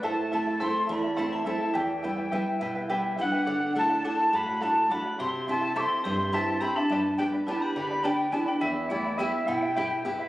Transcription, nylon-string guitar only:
\new Staff \with { instrumentName = "Nylon-string guitar" } { \time 6/8 \key e \minor \tempo 4. = 70 a,8 <a c' e'>8 <a c' e'>8 e,8 <a c' e'>8 <a c' e'>8 | e,8 <g b e'>8 <g b e'>8 b,8 <g b e'>8 <g b e'>8 | d8 <a d' fis'>8 <a d' fis'>8 a,8 <a d' fis'>8 <a d' fis'>8 | c8 <c' e' g'>8 <c' e' g'>8 g,8 <c' e' g'>8 <c' e' g'>8 |
g,8 <b d' g'>8 <b d' g'>8 d8 <b d' g'>8 <b d' g'>8 | e,8 <b e' g'>8 <b e' g'>8 b,8 <b e' g'>8 <b e' g'>8 | }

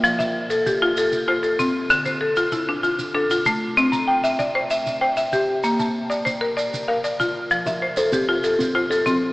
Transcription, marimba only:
\new Staff \with { instrumentName = "Marimba" } { \time 12/8 \key f \major \tempo 4. = 128 << { e''8 e''4. g'4 a'4 c''8 a'4. | r8 c''8 a'4 e'4 f'4 a'8 f'4. | r8 bes''8 g''4 d''4 e''4 g''8 e''4. | r8 a''4. c''4 d''4 f''8 d''4. |
r8 e''8 c''4 g'4 a'4 c''8 a'4. | } \\ { f4 r8 a'4 f'4 r8 f'4 c'4 | d4 r8 f'4 d'4 r8 d'4 a4 | c'4 r8 e''4 c''4 r8 c''4 g'4 | bes4 r8 d''4 bes'4 r8 bes'4 f'4 |
f4 r8 a'4 f'4 r8 f'4 c'4 | } >> }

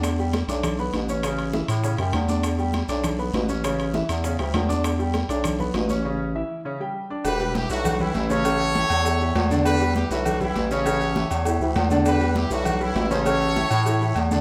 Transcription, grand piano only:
\new Staff \with { instrumentName = "Grand piano" } { \time 4/4 \key e \dorian \tempo 4 = 200 <d' d'' d'''>8 <g g' g''>4 <d' d'' d'''>4 <b b' b''>4 <cis' cis'' cis'''>8 | <cis cis' cis''>4 <e e' e''>4 <cis cis' cis''>8 <g g' g''>4 <d' d'' d'''>8~ | <d' d'' d'''>8 <g g' g''>4 <d' d'' d'''>4 <b b' b''>4 <cis' cis'' cis'''>8 | <cis cis' cis''>4 <e e' e''>4 <cis cis' cis''>8 <g g' g''>4 <d' d'' d'''>8~ |
<d' d'' d'''>8 <g g' g''>4 <d' d'' d'''>4 <b b' b''>4 <cis' cis'' cis'''>8 | <cis cis' cis''>4 <e e' e''>4 <cis cis' cis''>8 <g g' g''>4 <d' d'' d'''>8 | r8 <g g' b'>4 <g e' b'>4 <g g' b'>4 <cis cis' cis''>8 | <cis cis' cis''>4 <e e' g'>4 <e e' g'>8 <e e' g'>4 <d d' d''>8~ |
<d d' d''>8 <g g' b'>4 <g e' b'>4 <g g' b'>4 <cis cis' cis''>8 | <cis cis' cis''>4 <e e' g'>4 <e e' g'>8 <e e' g'>4 <d d' d''>8~ | <d d' d''>8 <g g' b'>4 <g e' b'>4 <g g' b'>4 <cis cis' cis''>8 | <cis cis' cis''>4 <e e' g'>4 <e e' g'>8 <e e' g'>4 <d d' d''>8 | }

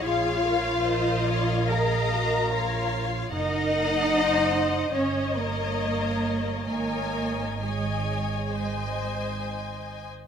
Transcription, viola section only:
\new Staff \with { instrumentName = "Viola section" } { \time 4/4 \key aes \mixolydian \tempo 4 = 70 << { des''4 c''8 des''8 ees''4 des''4 | ees''2 ees''2 | ees''4 ees''4 ees''4.~ ees''16 r16 | } \\ { aes'8 bes'8 bes'4 aes'8 ges'8 f'4 | bes'4 c''4 des''2 | des''4 des''4 c''4.~ c''16 r16 | } >> }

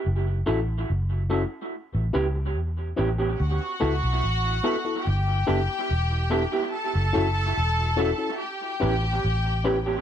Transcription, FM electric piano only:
\new Staff \with { instrumentName = "FM electric piano" } { \time 4/4 \key d \major \tempo 4 = 72 r8 <cis' e' fis' a'>16 r8. <cis' e' fis' a'>16 r8 <g' b'>16 <cis' e' g' b'>16 r8. <cis' e' g' b'>16 <g' b'>16 | r8 <b e' fis' a'>16 r8. <b e' fis' a'>16 <b e' fis' a'>16 r8 <b d' e' a'>16 r8. <b d' e' a'>16 r16 | r8 <cis' e' fis' a'>16 r8. <cis' e' fis' a'>16 <cis' e' fis' a'>16 r8 <cis' e' g' b'>16 r8. <cis' e' g' b'>16 r16 | }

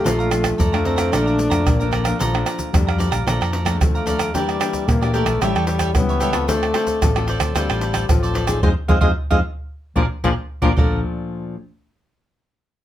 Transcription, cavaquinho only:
\new Staff \with { instrumentName = "Cavaquinho" } { \time 4/4 \key bes \major \tempo 4 = 112 <a' d'' f'' bes''>16 <d'' f'' bes''>16 r8 <a' d'' f'' bes''>16 <d'' f'' bes''>16 <a' d'' f'' bes''>16 <d'' f'' bes''>16 <a' d'' f'' bes''>16 <d'' f'' bes''>16 r16 <d'' f'' bes''>8 <d'' f'' bes''>16 <a' d'' f'' bes''>16 <d'' f'' bes''>16 | <a' d'' f'' bes''>8 <d'' f'' bes''>8. <d'' f'' bes''>16 <a' d'' f'' bes''>16 <d'' f'' bes''>16 <a' d'' f'' bes''>16 <a' d'' f'' bes''>16 <a' d'' f'' bes''>16 <a' d'' f'' bes''>16 r16 <d'' f'' bes''>16 <a' d'' f'' bes''>16 <d'' f'' bes''>16 | <g' bes' d'' e''>8 <g' bes' d'' e''>8. <bes' d'' e''>16 <g' bes' d'' e''>16 <bes' d'' e''>16 <g' a' cis'' e''>16 <g' a' cis'' e''>16 <g' a' cis'' e''>16 <g' a' cis'' e''>16 r16 <a' cis'' e''>16 <g' a' cis'' e''>16 <a' cis'' e''>16 | <f' a' c'' d''>8 <f' a' c'' d''>8. <a' c'' d''>16 <f' a' c'' d''>16 <a' c'' d''>16 <f' a' c'' d''>16 <f' a' c'' d''>16 <f' a' c'' d''>16 <f' a' c'' d''>16 r16 <a' c'' d''>16 <f' a' c'' d''>16 <a' c'' d''>16 |
<c'' ees'' f''>16 r16 <c'' ees'' f''>16 <c'' ees'' f''>16 r16 <c'' ees'' f''>16 r4 <aes' bes' d''>16 r16 <aes' bes' d''>16 r8 <aes' bes' d''>16 | <a' d'' f'' bes''>8 r2. r8 | }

